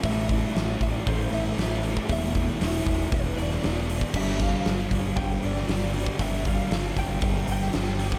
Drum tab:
CC |----------------|----------------|x---------------|----------------|
HH |o-o-o-o-o-o-o-o-|o-o-o-o-o-o-o-o-|--o-o-o-o-o-o-o-|o-o-o-o-o-o-o-o-|
SD |----o-------oo--|----o------oo---|----o------ooo--|----o------ooo--|
BD |o-o---o-o------o|o-o---o-o------o|o-o---o-o------o|o-o---o-o------o|